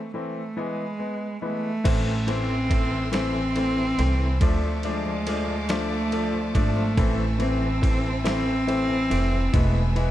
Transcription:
0.00 0.11 A3 medium
0.14 0.40 E3 medium
0.14 0.40 A3 soft
0.14 0.60 A3 medium
0.14 0.41 C4 medium
0.57 0.83 E3 medium
0.57 0.83 G#3 medium
0.57 1.42 G#3 medium
0.57 0.83 B3 medium
0.99 1.26 G#3 medium
0.99 1.26 B3 medium
1.42 1.68 E3 medium
1.42 1.68 G#3 medium
1.42 2.31 A3 medium
1.42 1.69 B3 medium
1.84 3.95 A1 medium
1.84 2.11 E3 medium
1.84 2.05 E3 medium
1.84 2.11 A3 medium
1.84 2.11 C4 medium
1.84 2.69 C4 medium
1.84 4.39 A4 medium
1.84 4.39 E5 medium
1.84 4.39 C6 medium
1.84 4.39 E6 medium
1.84 kick loud
1.84 crash medium
1.84 ride medium
2.06 2.48 E3 medium
2.27 2.54 E3 medium
2.27 2.54 A3 medium
2.27 3.55 A3 medium
2.27 2.54 C4 medium
2.27 3.13 C4 loud
2.27 ride soft
2.49 2.90 E3 medium
2.70 2.96 E3 medium
2.70 2.96 A3 medium
2.70 3.12 C4 medium
2.70 2.97 C4 medium
2.70 kick medium
2.70 ride medium
2.91 3.11 E3 medium
3.12 3.39 E3 medium
3.12 3.33 E3 medium
3.12 3.39 A3 medium
3.12 3.39 C4 medium
3.12 3.97 C4 medium
3.12 4.37 C4 loud
3.12 snare medium
3.12 ride medium
3.34 3.76 E3 medium
3.55 3.82 E3 medium
3.55 6.11 A3 medium
3.55 3.82 A3 medium
3.55 3.82 C4 medium
3.55 ride soft
3.77 4.19 E3 medium
3.98 4.39 C2 medium
3.98 4.25 E3 medium
3.98 4.25 A3 medium
3.98 4.41 C4 medium
3.98 4.25 C4 medium
3.98 ride medium
4.20 4.40 E3 medium
4.41 6.51 D2 medium
4.41 4.61 F3 medium
4.41 4.68 F3 medium
4.41 4.68 A3 medium
4.41 4.87 A3 medium
4.41 5.25 D4 medium
4.41 4.68 D4 loud
4.41 6.95 F4 medium
4.41 6.95 D5 medium
4.41 9.50 A5 medium
4.41 6.95 D6 medium
4.41 kick loud
4.41 ride medium
4.62 5.04 F3 medium
4.83 5.10 F3 medium
4.83 5.73 G#3 medium
4.83 5.10 A3 medium
4.83 5.11 D4 medium
4.83 ride soft
5.05 5.46 F3 medium
5.26 5.53 F3 medium
5.26 5.53 A3 medium
5.26 5.69 D4 medium
5.26 5.53 D4 medium
5.26 snare soft
5.26 ride medium
5.48 5.68 F3 medium
5.69 5.89 F3 medium
5.69 5.95 F3 medium
5.69 5.96 A3 medium
5.69 6.55 A3 loud
5.69 5.96 D4 medium
5.69 6.53 D4 medium
5.69 snare loud
5.69 ride medium
5.90 6.32 F3 medium
6.11 6.38 F3 medium
6.11 7.39 A3 medium
6.11 6.38 A3 medium
6.11 6.39 D4 medium
6.11 ride soft
6.33 6.75 F3 medium
6.54 6.95 G#1 medium
6.54 6.81 F3 medium
6.54 6.81 A3 medium
6.54 7.44 A3 medium
6.54 6.97 D4 medium
6.54 6.81 D4 medium
6.54 kick medium
6.54 ride medium
6.76 6.97 F3 medium
6.97 9.07 A1 loud
6.97 7.23 E3 medium
6.97 7.18 E3 medium
6.97 7.23 A3 medium
6.97 7.24 C4 medium
6.97 7.82 E4 medium
6.97 9.51 C5 medium
6.97 9.51 E5 medium
6.97 10.11 E6 medium
6.97 kick loud
6.97 ride medium
7.18 7.60 E3 medium
7.39 7.66 E3 medium
7.39 7.66 A3 medium
7.39 7.66 C4 medium
7.39 8.67 C4 medium
7.39 8.27 C4 medium
7.39 ride soft
7.61 8.04 E3 medium
7.81 8.08 E3 medium
7.81 8.08 A3 medium
7.81 8.09 C4 medium
7.81 8.26 E4 medium
7.81 kick medium
7.81 ride medium
8.04 8.25 E3 medium
8.24 8.51 E3 medium
8.24 8.46 E3 medium
8.24 8.51 A3 medium
8.24 8.51 C4 medium
8.24 9.58 C4 loud
8.24 9.11 E4 medium
8.24 snare loud
8.24 ride medium
8.46 8.89 E3 medium
8.67 8.94 E3 medium
8.67 8.94 A3 medium
8.67 8.94 C4 medium
8.67 9.53 C4 medium
8.67 ride soft
8.89 9.32 E3 medium
9.10 9.51 F1 medium
9.10 9.37 E3 medium
9.10 9.37 A3 medium
9.10 9.37 C4 medium
9.10 9.96 E4 medium
9.10 ride medium
9.32 10.11 E3 medium
9.53 10.11 E1 loud
9.53 9.79 E3 medium
9.53 9.80 G#3 medium
9.53 9.89 A3 medium
9.53 9.80 B3 medium
9.53 9.74 B3 medium
9.53 10.11 G#4 medium
9.53 10.11 B4 medium
9.53 10.11 E5 medium
9.53 10.11 G#5 medium
9.53 kick loud
9.53 ride medium
9.75 10.11 B3 medium
9.90 9.99 A3 medium
9.95 10.11 E3 medium
9.95 10.11 G#3 medium
9.95 10.11 B3 medium
9.95 10.11 E4 medium
9.95 ride soft

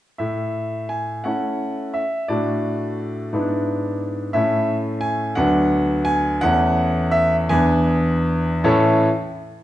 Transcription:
0.18 1.22 A2 soft
0.18 0.90 E5 medium
0.89 1.25 G#5 medium
1.24 2.00 A3 soft
1.24 2.00 C#4 soft
1.24 2.01 E4 soft
1.24 1.94 F#5 medium
1.94 2.25 E5 medium
2.28 3.30 A2 soft
2.28 3.30 A3 soft
2.28 3.29 D4 soft
2.28 3.30 F#4 soft
2.28 4.01 D5 medium
3.33 4.32 G#2 medium
3.33 4.31 B3 soft
3.33 4.31 D4 soft
3.33 4.32 E4 soft
4.33 5.34 A2 medium
4.33 5.33 A3 soft
4.33 5.33 C#4 soft
4.33 5.33 E4 soft
4.33 4.75 E5 medium
5.01 5.33 G#5 medium
5.35 6.39 D2 medium
5.35 6.38 F#3 medium
5.35 6.38 B3 medium
5.35 6.38 D4 soft
5.35 6.06 F#5 medium
6.05 6.41 G#5 loud
6.41 7.48 E2 medium
6.41 7.47 E3 medium
6.41 7.47 A3 medium
6.41 7.47 C#4 medium
6.41 7.09 F#5 medium
7.11 7.34 E5 loud
7.49 8.62 E2 medium
7.49 8.62 E3 medium
7.49 8.62 B3 medium
7.49 8.63 D4 medium
7.49 8.66 G#5 loud
8.64 9.06 A2 medium
8.64 9.06 E3 medium
8.64 9.06 C#4 medium
8.64 9.06 E4 medium
8.64 9.07 A4 medium
8.64 9.07 C#5 medium
8.64 9.06 A5 medium

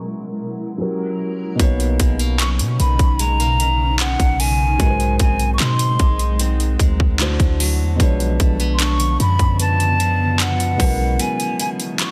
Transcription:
0.00 0.74 B2 medium
0.00 0.77 B2 medium
0.00 0.74 F#3 medium
0.00 1.56 F#3 medium
0.00 0.75 G#3 medium
0.00 0.77 G#3 medium
0.00 0.76 C#4 medium
0.00 0.77 E4 medium
0.00 1.56 E4 medium
0.00 0.77 A#4 medium
0.00 0.78 A#4 medium
0.78 1.59 F#3 medium
0.78 1.59 C#4 medium
0.78 1.60 E4 medium
0.78 1.60 G4 medium
0.78 1.61 A#4 medium
1.55 4.73 B2 medium
1.55 4.74 B3 medium
1.55 4.75 D#4 medium
1.60 1.98 B1 loud
1.60 4.80 B2 medium
1.60 4.77 B2 medium
1.60 4.77 C#3 medium
1.60 4.76 A#3 medium
1.60 4.77 C#4 medium
1.60 7.16 D#4 medium
1.60 4.77 C#5 loud
1.60 kick loud
1.60 closed hi-hat medium
1.80 closed hi-hat soft
2.00 2.61 B1 loud
2.00 2.19 G#3 medium
2.00 kick medium
2.00 closed hi-hat medium
2.19 3.19 A#3 medium
2.19 closed hi-hat soft
2.39 3.99 C#4 medium
2.39 2.49 C#6 loud
2.39 clap loud
2.39 closed hi-hat medium
2.59 2.79 B2 loud
2.59 closed hi-hat medium
2.80 2.99 B1 loud
2.80 3.60 D#3 medium
2.80 3.22 B5 loud
2.80 closed hi-hat medium
2.99 4.16 B1 loud
2.99 kick medium
2.99 closed hi-hat soft
3.19 3.40 G#3 medium
3.19 3.99 A#5 loud
3.19 closed hi-hat medium
3.40 4.88 A#3 medium
3.40 closed hi-hat soft
3.60 4.40 D#3 medium
3.60 closed hi-hat medium
4.00 4.88 C#4 medium
4.00 4.41 F#5 loud
4.00 clap loud
4.00 closed hi-hat medium
4.20 4.77 B1 loud
4.20 kick medium
4.20 closed hi-hat medium
4.40 6.00 D#3 medium
4.40 5.20 G#5 loud
4.40 open hi-hat medium
4.78 5.18 B1 loud
4.78 7.28 G#2 medium
4.78 7.97 F#3 medium
4.78 7.15 G#3 medium
4.78 7.17 G#3 medium
4.78 7.16 F#4 medium
4.78 7.17 A#4 medium
4.78 kick loud
4.78 closed hi-hat medium
4.84 4.88 B4 medium
4.90 7.21 C5 medium
5.00 closed hi-hat soft
5.19 5.58 B1 loud
5.19 6.39 C4 medium
5.19 5.51 G#5 medium
5.19 kick loud
5.19 closed hi-hat medium
5.39 closed hi-hat soft
5.54 5.62 C#6 medium
5.59 5.98 B2 loud
5.59 7.28 D#4 medium
5.59 6.40 C6 loud
5.59 clap loud
5.59 closed hi-hat medium
5.79 closed hi-hat medium
5.99 6.77 B1 loud
5.99 6.79 G#3 medium
5.99 kick loud
5.99 closed hi-hat medium
6.19 closed hi-hat soft
6.39 7.28 C4 medium
6.39 closed hi-hat medium
6.60 closed hi-hat soft
6.79 7.37 D2 loud
6.79 7.28 G#3 medium
6.79 kick loud
6.79 closed hi-hat medium
7.00 kick loud
7.18 7.99 D3 medium
7.18 10.76 D3 medium
7.18 8.00 D3 medium
7.18 7.99 A3 medium
7.18 8.00 E4 medium
7.18 8.00 F#4 medium
7.18 clap loud
7.18 closed hi-hat medium
7.22 8.01 C5 medium
7.40 7.82 D2 loud
7.40 kick loud
7.40 closed hi-hat medium
7.60 8.08 F#3 medium
7.60 open hi-hat medium
7.80 7.99 E2 loud
7.96 10.74 B2 medium
7.96 10.75 G#3 medium
7.96 kick loud
8.00 8.38 B1 loud
8.00 10.78 B2 medium
8.00 10.77 C#3 medium
8.00 10.77 F3 medium
8.00 10.77 B3 medium
8.00 10.76 D4 medium
8.00 10.78 C#5 loud
8.00 closed hi-hat medium
8.20 closed hi-hat soft
8.40 9.17 B1 loud
8.40 8.60 A3 medium
8.40 kick loud
8.40 closed hi-hat medium
8.60 9.58 B3 medium
8.60 closed hi-hat soft
8.74 8.83 C6 medium
8.79 10.38 D4 medium
8.79 9.21 C#6 loud
8.79 clap loud
8.79 closed hi-hat medium
9.00 closed hi-hat medium
9.20 9.39 F#2 loud
9.20 9.98 F3 medium
9.20 9.58 B5 loud
9.20 closed hi-hat medium
9.39 10.75 F#2 loud
9.39 kick medium
9.39 closed hi-hat medium
9.59 10.88 B3 medium
9.59 10.42 A5 loud
9.59 closed hi-hat medium
9.80 closed hi-hat medium
9.99 10.88 F3 medium
9.99 closed hi-hat medium
10.39 10.88 D4 medium
10.39 11.23 F#5 loud
10.39 clap loud
10.39 closed hi-hat medium
10.60 closed hi-hat medium
10.76 11.18 B1 loud
10.76 12.11 B2 medium
10.76 11.18 B2 medium
10.76 12.11 F#3 medium
10.76 12.11 G#3 medium
10.76 12.11 C#4 medium
10.76 kick loud
10.76 open hi-hat medium
10.80 12.11 E3 medium
10.80 12.11 F#3 medium
10.80 12.11 G#3 medium
10.80 12.11 C#4 medium
10.80 12.11 E4 medium
10.80 12.11 A#4 medium
11.19 12.11 B2 medium
11.19 11.60 G#5 medium
11.19 closed hi-hat medium
11.40 closed hi-hat soft
11.59 12.11 E4 medium
11.59 11.70 G#5 medium
11.59 closed hi-hat medium
11.80 closed hi-hat soft
11.99 12.11 F#4 medium
11.99 12.11 C#6 loud
11.99 clap loud
11.99 closed hi-hat medium

